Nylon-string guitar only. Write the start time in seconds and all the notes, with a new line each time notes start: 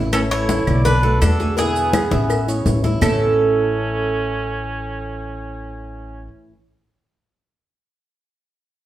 Already playing: E3 A3 C#4 E4
0.12 E3 A3 C#4 E4
0.49 E3 A3 C#4 E4
0.85 muted nylon-string guitar stroke
1.02 D3 A3 B3 F#4
1.21 D3 A3 B3 F#4
1.39 D3 A3 B3 F#4
1.58 B2 D3 G#3 B3 E4
1.94 D3 G#3 B3 E4
2.30 muted nylon-string guitar stroke
2.47 A3 C#4 E4
2.65 E3 A3 C#4 E4
2.83 A3 C#4 E4
3.01 A2 E3 A3 C#4 E4